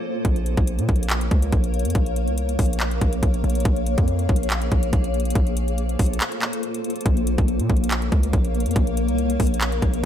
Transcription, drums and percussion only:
0.25 kick, closed hi-hat
0.36 closed hi-hat
0.46 closed hi-hat
0.57 kick, closed hi-hat
0.67 closed hi-hat
0.79 closed hi-hat
0.89 kick, closed hi-hat
0.96 closed hi-hat
1.03 closed hi-hat
1.10 clap, closed hi-hat
1.21 closed hi-hat
1.31 kick, closed hi-hat
1.42 closed hi-hat
1.52 kick, closed hi-hat
1.64 closed hi-hat
1.74 closed hi-hat
1.79 closed hi-hat
1.85 closed hi-hat
1.90 closed hi-hat
1.95 kick, closed hi-hat
2.06 closed hi-hat
2.16 closed hi-hat
2.28 closed hi-hat
2.38 closed hi-hat
2.49 closed hi-hat
2.59 kick, closed hi-hat, open hi-hat
2.66 closed hi-hat
2.73 closed hi-hat
2.80 clap, closed hi-hat
2.91 closed hi-hat
3.01 kick, closed hi-hat
3.13 closed hi-hat
3.23 kick, closed hi-hat
3.34 closed hi-hat
3.44 closed hi-hat
3.50 closed hi-hat
3.55 closed hi-hat
3.60 closed hi-hat
3.65 kick, closed hi-hat
3.76 closed hi-hat
3.86 closed hi-hat
3.98 kick, closed hi-hat
4.08 closed hi-hat
4.19 closed hi-hat
4.29 kick, closed hi-hat
4.36 closed hi-hat
4.43 closed hi-hat
4.50 clap, closed hi-hat
4.62 closed hi-hat
4.72 kick, closed hi-hat
4.83 closed hi-hat
4.93 kick, closed hi-hat
5.04 closed hi-hat
5.14 closed hi-hat
5.20 closed hi-hat
5.25 closed hi-hat
5.30 closed hi-hat
5.35 kick, closed hi-hat
5.47 closed hi-hat
5.57 closed hi-hat
5.68 closed hi-hat
5.78 closed hi-hat
5.89 closed hi-hat
5.99 kick, closed hi-hat, open hi-hat
6.06 closed hi-hat
6.13 closed hi-hat
6.21 clap, closed hi-hat
6.32 closed hi-hat
6.42 clap, closed hi-hat
6.53 closed hi-hat
6.63 closed hi-hat
6.74 closed hi-hat
6.84 closed hi-hat
6.90 closed hi-hat
6.96 closed hi-hat
7.01 closed hi-hat
7.06 kick, closed hi-hat
7.17 closed hi-hat
7.27 closed hi-hat
7.38 kick, closed hi-hat
7.48 closed hi-hat
7.59 closed hi-hat
7.69 kick, closed hi-hat
7.77 closed hi-hat
7.84 closed hi-hat
7.91 clap, closed hi-hat
8.02 closed hi-hat
8.12 kick, closed hi-hat
8.23 closed hi-hat
8.33 kick, closed hi-hat
8.45 closed hi-hat
8.55 closed hi-hat
8.60 closed hi-hat
8.66 closed hi-hat
8.71 closed hi-hat
8.76 kick, closed hi-hat
8.87 closed hi-hat
8.97 closed hi-hat
9.08 closed hi-hat
9.18 closed hi-hat
9.30 closed hi-hat
9.40 kick, closed hi-hat, open hi-hat
9.47 closed hi-hat
9.54 closed hi-hat
9.61 clap, closed hi-hat
9.72 closed hi-hat
9.82 kick, closed hi-hat
9.94 closed hi-hat

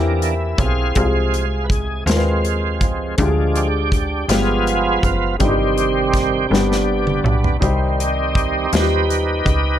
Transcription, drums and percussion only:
0.22 closed hi-hat
0.58 kick, closed hi-hat
0.95 kick, closed hi-hat
1.34 closed hi-hat
1.70 kick, closed hi-hat
2.07 snare, closed hi-hat
2.45 closed hi-hat
2.81 kick, closed hi-hat
3.18 kick, closed hi-hat
3.56 closed hi-hat
3.92 kick, closed hi-hat
4.29 snare, closed hi-hat
4.67 closed hi-hat
5.03 kick, closed hi-hat
5.40 kick, closed hi-hat
5.78 closed hi-hat
6.14 kick, snare, closed hi-hat
6.54 snare
6.72 snare
7.07 mid tom
7.26 mid tom
7.44 floor tom
7.62 kick, closed hi-hat
8.00 closed hi-hat
8.35 kick, closed hi-hat
8.73 snare, closed hi-hat
9.10 closed hi-hat
9.46 kick, closed hi-hat

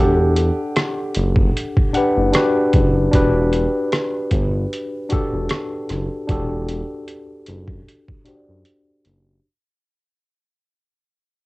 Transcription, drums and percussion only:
0.36 closed hi-hat
0.76 cross-stick, closed hi-hat
1.15 closed hi-hat
1.36 kick
1.57 closed hi-hat
1.77 kick
1.94 closed hi-hat
2.33 cross-stick, closed hi-hat
2.73 kick, closed hi-hat
3.13 kick, closed hi-hat
3.53 closed hi-hat
3.92 cross-stick, closed hi-hat
4.31 kick, closed hi-hat
4.73 closed hi-hat
5.10 kick, closed hi-hat
5.49 cross-stick, closed hi-hat
5.89 cross-stick, closed hi-hat
6.29 kick, closed hi-hat
6.69 closed hi-hat
7.08 closed hi-hat
7.46 closed hi-hat
7.68 kick
7.88 closed hi-hat
8.08 kick
8.26 closed hi-hat
8.65 closed hi-hat
9.05 closed hi-hat

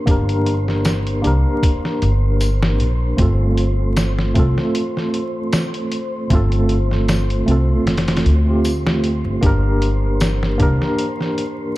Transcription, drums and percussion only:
0.07 kick, closed hi-hat
0.29 closed hi-hat
0.46 closed hi-hat
0.68 snare
0.85 snare, closed hi-hat, tambourine
1.07 closed hi-hat
1.24 closed hi-hat
1.63 kick, closed hi-hat
1.85 snare
2.02 closed hi-hat
2.40 closed hi-hat, tambourine
2.63 snare
2.80 closed hi-hat
3.18 kick, closed hi-hat
3.58 closed hi-hat
3.97 snare, closed hi-hat, tambourine
4.19 snare
4.35 kick, closed hi-hat
4.58 snare
4.75 closed hi-hat
4.97 snare
5.14 closed hi-hat
5.53 snare, closed hi-hat, tambourine
5.74 closed hi-hat
5.92 closed hi-hat
6.30 kick, closed hi-hat
6.52 closed hi-hat
6.69 closed hi-hat
6.91 snare
7.09 snare, closed hi-hat, tambourine
7.30 closed hi-hat
7.48 closed hi-hat
7.87 snare, closed hi-hat
7.97 snare, closed hi-hat
8.08 snare, closed hi-hat
8.17 snare, closed hi-hat
8.26 closed hi-hat
8.65 closed hi-hat, tambourine
8.87 snare
9.04 closed hi-hat
9.43 kick, closed hi-hat
9.82 closed hi-hat
10.20 snare, closed hi-hat, tambourine
10.43 snare
10.60 kick, closed hi-hat
10.82 snare
10.99 closed hi-hat
11.21 snare
11.38 closed hi-hat

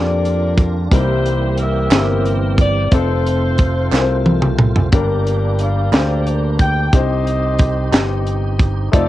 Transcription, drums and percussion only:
0.25 closed hi-hat
0.58 kick, closed hi-hat
0.92 kick, closed hi-hat
1.26 closed hi-hat
1.58 closed hi-hat
1.91 snare, clap, closed hi-hat
2.26 closed hi-hat
2.58 kick, closed hi-hat
2.92 kick, closed hi-hat
3.26 closed hi-hat
3.58 kick, closed hi-hat
3.92 snare, clap
4.26 high tom
4.42 mid tom
4.59 mid tom
4.76 floor tom
4.92 kick, closed hi-hat
5.27 closed hi-hat
5.59 closed hi-hat
5.93 snare, clap, closed hi-hat
6.27 closed hi-hat
6.59 kick, closed hi-hat
6.93 kick, closed hi-hat
7.27 closed hi-hat
7.59 kick, closed hi-hat
7.93 snare, clap, closed hi-hat
8.27 closed hi-hat
8.59 kick, closed hi-hat
8.93 kick, closed hi-hat

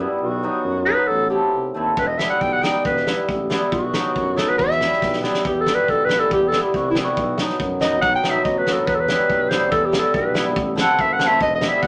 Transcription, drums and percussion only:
1.97 kick
2.19 snare
2.41 kick
2.64 snare
2.85 kick
2.97 snare
3.07 snare
3.29 kick
3.50 snare
3.72 kick
3.94 snare
4.16 kick
4.38 snare
4.59 kick
4.71 snare
4.81 snare
4.92 snare
5.02 kick, snare
5.13 snare
5.23 snare
5.34 snare
5.45 kick
5.66 snare
5.88 kick
6.09 snare
6.31 kick
6.52 snare
6.74 kick
6.95 snare
7.17 kick
7.38 snare
7.49 snare
7.60 kick
7.81 snare
8.02 kick
8.24 snare
8.45 kick
8.67 snare
8.87 kick
9.08 snare
9.30 kick
9.51 snare
9.72 kick
9.93 snare
10.14 kick
10.35 snare
10.56 kick
10.78 snare
10.99 kick
11.20 snare
11.41 kick
11.61 snare
11.83 kick

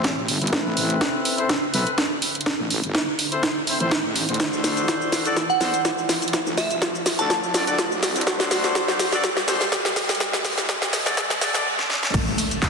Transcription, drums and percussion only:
0.04 kick, snare, closed hi-hat
0.28 open hi-hat
0.42 closed hi-hat
0.47 closed hi-hat
0.53 kick, snare, closed hi-hat
0.77 open hi-hat
0.90 closed hi-hat
1.01 kick, snare, closed hi-hat
1.25 open hi-hat
1.38 closed hi-hat
1.49 kick, snare, closed hi-hat
1.74 open hi-hat
1.87 closed hi-hat
1.98 kick, snare, closed hi-hat
2.22 open hi-hat
2.35 closed hi-hat
2.41 closed hi-hat
2.46 kick, snare
2.70 open hi-hat
2.84 closed hi-hat
2.95 kick, snare, closed hi-hat
3.19 open hi-hat
3.32 closed hi-hat
3.43 kick, snare, closed hi-hat
3.67 open hi-hat
3.80 closed hi-hat
3.91 kick, snare, closed hi-hat
4.16 open hi-hat
4.29 closed hi-hat
4.34 closed hi-hat
4.40 kick, snare, closed hi-hat, shaker
4.53 shaker
4.64 snare, open hi-hat, shaker
4.77 closed hi-hat, shaker
4.88 kick, snare, closed hi-hat, shaker
5.02 shaker
5.12 snare, open hi-hat, shaker
5.25 closed hi-hat, shaker
5.37 kick, snare, closed hi-hat, shaker
5.50 shaker
5.61 snare, open hi-hat, shaker
5.74 closed hi-hat, shaker
5.85 kick, snare, closed hi-hat, shaker
5.98 shaker
6.09 snare, open hi-hat, shaker
6.22 closed hi-hat, shaker
6.28 closed hi-hat
6.33 kick, snare, closed hi-hat, shaker
6.47 shaker
6.58 snare, open hi-hat, shaker
6.71 closed hi-hat, shaker
6.82 kick, snare, closed hi-hat, shaker
6.95 shaker
7.06 snare, open hi-hat, shaker
7.19 closed hi-hat, shaker
7.30 kick, snare, closed hi-hat, shaker
7.43 shaker
7.54 snare, open hi-hat, shaker
7.67 closed hi-hat, shaker
7.78 kick, snare, closed hi-hat, shaker
7.92 shaker
8.03 snare, open hi-hat, shaker
8.16 closed hi-hat, shaker
8.21 closed hi-hat
8.27 kick, snare, closed hi-hat, shaker
8.40 snare, shaker
8.51 snare, open hi-hat, shaker
8.64 snare, closed hi-hat, shaker
8.75 kick, snare, closed hi-hat, shaker
8.88 snare, shaker
8.99 snare, open hi-hat, shaker
9.12 snare, closed hi-hat, shaker
9.24 kick, snare, closed hi-hat, shaker
9.37 snare, shaker
9.48 snare, open hi-hat, shaker
9.61 snare, closed hi-hat, shaker
9.72 kick, snare, closed hi-hat, shaker
9.85 snare, shaker
9.96 snare, open hi-hat, shaker
10.09 snare, closed hi-hat, shaker
10.15 closed hi-hat
10.20 kick, snare, closed hi-hat, shaker
10.33 snare, shaker
10.45 snare, open hi-hat, shaker
10.58 snare, closed hi-hat, shaker
10.69 kick, snare, closed hi-hat, shaker
10.82 snare, shaker
10.93 snare, open hi-hat, shaker
11.06 snare, closed hi-hat, shaker
11.17 kick, snare, closed hi-hat, shaker
11.30 snare, shaker
11.41 snare, open hi-hat, shaker
11.54 snare, closed hi-hat, shaker
11.79 snare
11.90 snare
12.03 snare
12.14 kick, closed hi-hat, crash, shaker
12.27 shaker
12.38 open hi-hat, shaker
12.51 closed hi-hat, shaker
12.62 kick, clap, closed hi-hat, shaker

